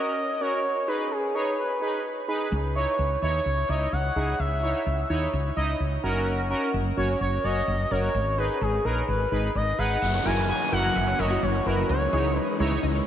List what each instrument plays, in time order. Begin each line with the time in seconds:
Already playing: analog polysynth C#4 F#4 A#4, analog synth lead D#5
0.41 analog polysynth C#4 F#4 A#4, analog synth lead C#5
0.88 analog polysynth D#4 G#4 B4, analog synth lead B4
1.11 analog synth lead G#4
1.35 analog polysynth D#4 G#4 C#5, analog synth lead B4
1.58 analog synth lead B4
1.81 analog polysynth D#4 G#4 B4
2.28 analog polysynth D#4 G#4 B4
2.52 fretless electric bass C#2
2.75 analog polysynth D#4 E4 C#5, analog synth lead C#5
2.99 fretless electric bass C#2
3.22 fretless electric bass D#2, analog polysynth D#4 E4 C#5, analog synth lead C#5
3.46 fretless electric bass C#2
3.69 fretless electric bass C#2, analog polysynth D#4 E4 C#5, analog synth lead D#5
3.92 fretless electric bass C#2, analog synth lead F#5
4.16 fretless electric bass C#2, analog polysynth D#4 E4 G#4
4.39 fretless electric bass C#2, analog synth lead E5
4.63 analog polysynth D#4 E4 C#5
4.86 fretless electric bass C#2
5.10 fretless electric bass D#2, analog polysynth D#4 E4 C#5
5.33 fretless electric bass C#2
5.56 fretless electric bass C#2, analog polysynth D#4 E4 D#5
5.80 fretless electric bass C#2
6.03 fretless electric bass F#1, analog polysynth C#4 F#4 A#4
6.50 analog polysynth C#4 F#4 A#4
6.74 fretless electric bass F#1
6.97 fretless electric bass F#1, analog polysynth C#4 F#4 C#5, analog synth lead C#5
7.21 fretless electric bass F#1, analog synth lead C#5
7.44 fretless electric bass F#1, analog polysynth C#4 F#4 C#5, analog synth lead D#5
7.67 fretless electric bass F#1
7.91 fretless electric bass F#1, analog polysynth C#4 F#4 A#4, analog synth lead C#5
8.14 fretless electric bass G#1
8.38 analog polysynth D#4 G#4 B4, analog synth lead B4
8.61 fretless electric bass G#1, analog synth lead G#4
8.85 fretless electric bass A#1, analog polysynth D#4 G#4 A#4, analog synth lead B4
9.08 fretless electric bass G#1, analog synth lead B4
9.32 fretless electric bass G#1, analog polysynth D#4 G#4 B4
9.55 fretless electric bass G#1, analog synth lead D#5
9.78 fretless electric bass G#1, analog polysynth D#4 G#4 B4, analog synth lead F#5
10.02 fretless electric bass F#1, string machine E3 F#3 A#3 C#4 F#4, synth pluck E5, downlifter
10.14 synth pluck C#5
10.25 fretless electric bass F#1, analog polysynth E4 F#4 A#4, synth pluck A#4, analog synth lead G#5
10.37 synth pluck F#4
10.49 synth pluck E4, analog synth lead G#5
10.61 synth pluck C#4
10.72 fretless electric bass F#1, synth pluck A#3, analog polysynth E4 F#4 A#4, analog synth lead F#5
10.84 synth pluck F#3
10.96 fretless electric bass F#1, synth pluck E5
11.07 synth pluck C#5
11.19 fretless electric bass F#1, analog polysynth E4 F#4 C#5, synth pluck A#4, analog synth lead D#5
11.31 synth pluck F#4
11.42 fretless electric bass F#1, synth pluck E4, analog synth lead C#5
11.54 synth pluck C#4
11.66 fretless electric bass F#1, synth pluck A#3, analog polysynth E4 F#4 A#4, analog synth lead B4
11.78 synth pluck F#3
11.89 fretless electric bass C#2, string machine G#3 C#4 D#4 G#4, analog synth lead C#5, synth pluck D#5
12.01 synth pluck C#5
12.13 fretless electric bass C#2, analog polysynth D#4 E4 C#5, synth pluck G#4
12.25 synth pluck E4
12.36 synth pluck D#4, analog synth lead B4
12.48 synth pluck C#4
12.60 fretless electric bass C#2, synth pluck G#3, analog polysynth D#4 E4 C#5
12.71 synth pluck E3
12.83 fretless electric bass C#2, synth pluck D#5
12.95 synth pluck C#5